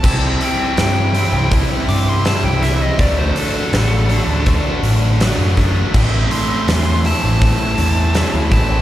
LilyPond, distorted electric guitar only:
\new Staff \with { instrumentName = "Distorted electric guitar" } { \time 4/4 \key a \dorian \tempo 4 = 81 <c g c' e'>4. <c g c' e'>4. <c g c' e'>4 | <d fis a d'>4. <d fis a d'>4. <d fis a d'>4 | <a, e a c' e'>4. <a, e a c' e'>4. <a, e a c' e'>8 <a, e a c' e'>8 | }